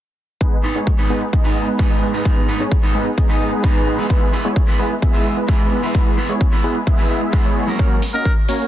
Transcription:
0.41 G#3 B3 D#4 G#4 B4, kick
0.63 G#2 G#3 B3 D#4 B4
0.75 G#3 B3 D#4 G#4 C#5
0.87 kick
0.98 G#2 G#3 B3 D#4 B4
1.10 G#3 B3 D#4 G#4 B4
1.33 G#3 B3 D#4 G#4 D#5, kick
1.44 G#2 G#3 B3 D#4 B4
1.68 G#3 B3 D#4 G#4 B4
1.79 G#2 G#3 B3 D#4 B4, kick
2.02 G#3 B3 D#4 G#4 B4
2.13 G#2 G#3 B3 D#4 B4
2.25 G#3 D#4 G#4, kick
2.48 G#2 G#3 B3 D#4 B4
2.60 G#3 B3 D#4 G#4 C#5
2.72 kick
2.82 G#2 G#3 B3 D#4 B4
2.95 G#3 B3 D#4 G#4 B4
3.18 G#3 B3 D#4 G#4 D#5, kick
3.29 G#2 G#3 B3 D#4 B4
3.52 G#3 B3 D#4 G#4 B4
3.63 G#2 G#3 B3 D#4 B4, kick
3.87 G#3 B3 D#4 G#4 B4
3.98 G#3 B3 E4 B4
4.10 G#3 B3 E4 G#4 B4, kick
4.32 G#3 B3 E4 B4
4.45 G#3 B3 E4 G#4 C#5
4.56 kick
4.67 G#3 B3 E4 B4
4.79 G#3 B3 E4 G#4 B4
5.02 G#3 B3 E4 G#4 E5, kick
5.13 G#3 B3 E4 B4
5.37 G#3 B3 E4 G#4 B4
5.48 G#3 B3 E4 B4, kick
5.72 G#3 B3 E4 G#4 B4
5.83 G#3 B3 E4 B4
5.95 G#3 B3 E4 B4, kick
6.17 G#3 B3 E4 B4
6.29 G#3 B3 E4 G#4 C#5
6.41 kick
6.52 G#3 B3 E4 B4
6.64 G#3 B3 E4 G#4 B4
6.87 G#3 B3 E4 G#4 E5, kick
6.98 G#3 B3 E4 B4
7.10 G#3 B3 E4 G#4 E5
7.32 G#3 B3 E4 B4, kick
7.45 G#3 B3 E4 G#4 C#5
7.67 F#3 A#3 C#4 A#4
7.79 A#3 C#4 F#4 A#4 C#5, kick
8.02 open hi-hat
8.14 A#3 C#4 F#4 A#4 D#5
8.25 kick
8.49 A#3 C#4 F#4 A#4 C#5, open hi-hat

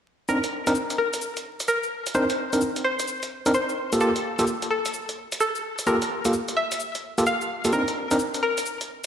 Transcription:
0.29 C4 D4 D#4 A#4, shaker
0.44 closed hi-hat, shaker
0.67 C4 D4 D#4 A#4, closed hi-hat, shaker
0.75 shaker
0.90 closed hi-hat, shaker
0.98 A#4
1.14 closed hi-hat, shaker
1.22 shaker
1.37 closed hi-hat, shaker
1.60 closed hi-hat, shaker
1.68 A#4, shaker
1.83 shaker
2.07 closed hi-hat, shaker
2.15 C4 D4 D#4 A#4 C5, shaker
2.30 closed hi-hat, shaker
2.53 C4 D4 D#4 A#4, closed hi-hat, shaker
2.61 shaker
2.76 closed hi-hat, shaker
2.85 C5
3.00 closed hi-hat, shaker
3.08 shaker
3.23 closed hi-hat, shaker
3.46 C4 D4 D#4 A#4, closed hi-hat, shaker
3.54 C5, shaker
3.69 shaker
3.93 A#3 F4 G4 A4, closed hi-hat, shaker
4.01 A#3 F4 G4 A4, shaker
4.16 closed hi-hat, shaker
4.39 A#3 F4 G4 A4, closed hi-hat, shaker
4.47 shaker
4.62 closed hi-hat, shaker
4.71 A4
4.86 closed hi-hat, shaker
4.94 shaker
5.09 closed hi-hat, shaker
5.32 closed hi-hat, shaker
5.40 A4, shaker
5.55 shaker
5.79 closed hi-hat, shaker
5.87 A#3 F4 G4 A4 A#4, shaker
6.02 closed hi-hat, shaker
6.25 A#3 F4 G4 A4, closed hi-hat, shaker
6.33 shaker
6.49 closed hi-hat, shaker
6.57 E5
6.72 closed hi-hat, shaker
6.80 shaker
6.95 closed hi-hat, shaker
7.18 A#3 F4 G4 A4, closed hi-hat, shaker
7.26 F5, shaker
7.42 shaker
7.65 A#3 F4 G4 A4, closed hi-hat, shaker
7.73 C4 D4 D#4 A#4, shaker
7.88 closed hi-hat, shaker
8.11 C4 D4 D#4 A#4, closed hi-hat, shaker
8.19 shaker
8.34 closed hi-hat, shaker
8.43 A#4
8.58 closed hi-hat, shaker
8.66 shaker
8.81 closed hi-hat, shaker

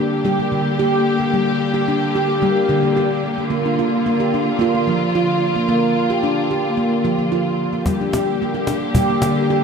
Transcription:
Already playing: D3 A#3 G4
0.00 D4
0.25 G3 G4
0.39 A#3
0.52 D3
0.79 G4
1.20 A#3
1.34 G3
1.74 G4
1.88 D4
2.15 G4
2.42 G3 A#3
2.69 D3 G4
2.83 A#3
2.97 G4
3.38 A#3
3.50 A#3 F4
3.65 D4
3.79 F4
4.06 A#3
4.20 G4
4.34 D4
4.59 A#3 F4
4.74 A#3
4.87 F3
5.15 F4
5.56 A#3
5.68 A#3
6.10 G4
6.23 D4
6.51 G4
6.77 A#3
7.05 F3 G4
7.19 A#3
7.32 F4
7.73 A#3
7.86 D3 G3 A#3 G4, cajon bass, cajon slap
8.00 D4, cajon slap
8.13 G4, cajon slap
8.40 A#3, cajon slap
8.54 G4, cajon slap
8.67 D4, cajon slap
8.81 cajon slap
8.95 G3 G4, cajon bass
9.10 A#3
9.22 D3, cajon slap
9.50 G4

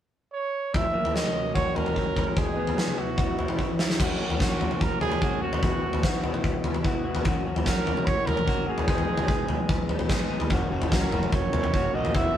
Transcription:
0.32 C#5
0.74 F#2 E5, kick, floor tom
0.94 A#3
1.05 floor tom
1.14 F#3 D#5, snare
1.26 mid tom
1.35 C#4
1.54 F#4 C#5, kick, floor tom
1.76 C#4 A#4, floor tom
1.86 floor tom
1.96 F#3, kick
2.16 C#4, kick, floor tom
2.36 E2 G#4, kick, floor tom
2.57 B3
2.67 floor tom
2.77 E3, snare
2.88 mid tom
2.98 E4 F#4
3.18 F#4, kick, floor tom
3.38 E4, floor tom
3.48 floor tom
3.59 E3, kick, high tom
3.79 E4, snare
3.90 snare
3.98 F#2 C#3 F#3 A#3 C#4 F#4, kick, floor tom, crash
4.19 F#3 A#3 C#4 F#4
4.30 floor tom
4.38 F#2 C#3 F#3 A#3 C#4 F#4, kick, snare
4.58 F#3 A#3 C#4 F#4, floor tom
4.71 mid tom
4.81 A#4, kick, floor tom
5.01 G#4, floor tom, mid tom
5.12 floor tom
5.20 F#3 A#3 C#4 F#4, kick
5.40 F#3 A#3 C#4 F#4
5.53 floor tom
5.61 E2 B2 E3 B3 E4 F#4, kick, floor tom
5.82 E3 B3 E4 F#4
5.93 floor tom
6.02 E2 B2 E3 B3 E4 F#4, kick, snare
6.23 E3 B3 E4 F#4, floor tom
6.34 mid tom
6.44 kick, floor tom
6.64 floor tom, mid tom
6.74 floor tom
6.84 E3 B3 E4 F#4, kick
7.04 E3 B3 E4 F#4
7.15 floor tom
7.24 F#2 C#3 F#3 A#3 C#4 F#4, kick, floor tom
7.46 F#3 A#3 C#4 F#4
7.56 floor tom
7.65 F#2 C#3 F#3 A#3 C#4 F#4 A#4, kick, snare
7.85 F#3 A#3 C#4 F#4, floor tom
7.97 mid tom
8.06 C#5, kick, floor tom
8.27 A#4, floor tom, mid tom
8.37 floor tom
8.45 F#3 A#3 C#4 F#4, kick
8.66 F#3 A#3 C#4 F#4 G#4
8.78 floor tom
8.87 G#2 D#3 G#3 B3 D#4 G#4, kick, floor tom
8.98 floor tom
9.08 G#3 B3 D#4 G#4
9.18 floor tom, mid tom
9.28 G#2 D#3 G#3 B3 D#4 G#4, kick
9.48 G#3 B3 D#4 G#4, floor tom
9.69 kick, floor tom
9.89 floor tom
9.99 floor tom
10.09 G#3 B3 D#4 G#4, kick, snare
10.30 G#3 B3 D#4 G#4
10.40 floor tom
10.50 F#1 F#2 C#3 F#3 A#3 C#4 F#4, kick, floor tom
10.70 F#1 F#3 A#3 C#4 F#4
10.82 floor tom
10.91 C#2 F#2 C#3 F#3 A#3 C#4 F#4 A#4, kick, snare
11.11 F#1 F#3 A#3 C#4 F#4, floor tom
11.23 mid tom
11.33 F#1 C#5, kick, floor tom
11.53 E2, floor tom, mid tom
11.64 floor tom
11.73 F#1 F#3 A#3 C#4 F#4, kick
11.93 A#1 F#3 A#3 C#4 F#4 D#5
12.05 floor tom
12.14 E1 E2 B2 E3 B3 E4 F#4 E5, kick, floor tom
12.34 E1 F#4

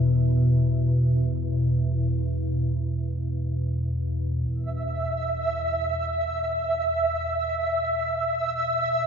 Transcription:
Already playing: E2 B2 E3 E4 B4 E5
4.49 E2 B2 E5

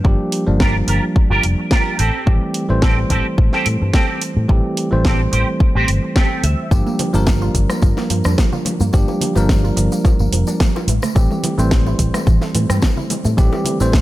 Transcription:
0.04 G1 F3 G3 A#3 D4 G4, muted clean electric guitar stroke, kick
0.19 muted clean electric guitar stroke
0.32 open hi-hat
0.46 G1 F3 G3 A#3 D4
0.59 F4 G4 A#4, kick, snare
0.87 G1 F4 G4 A#4, open hi-hat
1.15 muted clean electric guitar stroke, kick
1.30 G1 F4 G4 A#4
1.43 F1, open hi-hat
1.58 muted clean electric guitar stroke
1.71 F4 G4 A#4, kick, snare
1.99 A1 C4 G4 A4, open hi-hat
2.26 A1 E3 G3 A3 C4 G4, kick
2.41 muted clean electric guitar stroke
2.54 open hi-hat
2.68 A1 E3 G3 A3 C4 C5
2.82 C4 G4 A4, kick, snare
3.10 A1 C4 G4 A4, kick, open hi-hat
3.38 A1, muted clean electric guitar stroke, kick
3.53 C4 G4 A4, snare
3.66 A2, open hi-hat
3.80 G2, muted clean electric guitar stroke
3.93 C4 G4 A4, kick, snare
4.22 open hi-hat
4.37 A2
4.48 A1 E3 G3 A3 C4 G4, muted clean electric guitar stroke, kick
4.64 muted clean electric guitar stroke
4.77 open hi-hat
4.91 A1 E3 G3 A3 C4 C5
5.04 C4 G4 A4, kick, snare
5.32 A1 C4 G4 C5, open hi-hat
5.60 muted clean electric guitar stroke, kick
5.75 A1 C4 G4 C5
5.88 G1, open hi-hat
6.03 muted clean electric guitar stroke
6.15 C4 G4 A4 G5, kick, snare
6.44 D2 E5, open hi-hat
6.71 G1 F3 G3 A#3 D4 G4, kick, tambourine, cabasa
6.87 A#3, tambourine, high conga
6.99 F3, open hi-hat, high bongo, low conga, cabasa
7.13 G1 F3 G3 A#3 D4 A#4, tambourine, cabasa
7.26 F3, kick, snare, tambourine, high bongo, high conga, cabasa
7.42 F4, tambourine
7.55 G1 F3, kick, open hi-hat, cabasa
7.69 A#3, cross-stick, tambourine, high bongo, high conga, cabasa
7.82 G1 F3, kick, tambourine, cabasa
7.97 A#3, snare, tambourine, high bongo
8.10 G2 F3, open hi-hat, cabasa
8.24 F2 D4, cross-stick, tambourine, high conga, cabasa
8.38 F3, kick, snare, tambourine, high bongo, cabasa
8.53 F4, tambourine, low conga
8.65 F3, open hi-hat, high bongo, high conga, low conga, cabasa
8.80 G2 A#3, tambourine, cabasa
8.93 G1 F3 G3 A#3 D4 G4, kick, tambourine, cabasa
9.08 A#3, tambourine, high bongo, high conga
9.21 F3, open hi-hat, low conga, cabasa
9.36 G1 F3 G3 A#3 D4 A#4, tambourine, high bongo, cabasa
9.49 F3, kick, snare, tambourine, high conga, cabasa
9.64 F4, tambourine
9.77 G1 F3, open hi-hat, high bongo, cabasa
9.92 A#3, tambourine, high conga, cabasa
10.05 F3, kick, tambourine, high bongo, cabasa
10.19 G1 A#3, tambourine
10.32 F1 F3, open hi-hat, cabasa
10.47 D4, tambourine, high bongo, high conga, cabasa
10.60 F3, kick, snare, tambourine, cabasa
10.76 F4, tambourine, high bongo
10.88 A1 E3, open hi-hat, high conga, cabasa
11.02 A3, cross-stick, tambourine, low conga, cabasa
11.15 A1 E3 G3 A3 C4 G4, kick, tambourine, high bongo, cabasa
11.31 A3, tambourine, high conga
11.43 E3, open hi-hat, high bongo, low conga, cabasa
11.57 A1 E3 G3 A3 C4 C5, tambourine, cabasa
11.71 E3, kick, snare, tambourine, high conga, cabasa
11.86 E4, tambourine, high bongo
11.99 A1 E3, kick, open hi-hat, cabasa
12.14 A3, cross-stick, tambourine, high bongo, high conga, cabasa
12.27 A1 E3, kick, tambourine, cabasa
12.42 A3, snare, tambourine
12.55 A2 E3, open hi-hat, high bongo, cabasa
12.70 G2 C4, cross-stick, tambourine, high conga, cabasa
12.82 E3, kick, snare, tambourine, high bongo, cabasa
12.97 E4, tambourine, low conga
13.10 E3, open hi-hat, high conga, low conga, cabasa
13.24 A2 A3, tambourine, high bongo, cabasa
13.37 A1 E3 G3 A3 C4 G4, kick, tambourine, cabasa
13.52 A3, tambourine, high bongo, high conga
13.65 E3, open hi-hat, low conga, cabasa
13.80 A1 E3 G3 A3 C4 C5, tambourine, cabasa
13.92 E3, kick, snare, tambourine, high bongo, high conga, cabasa

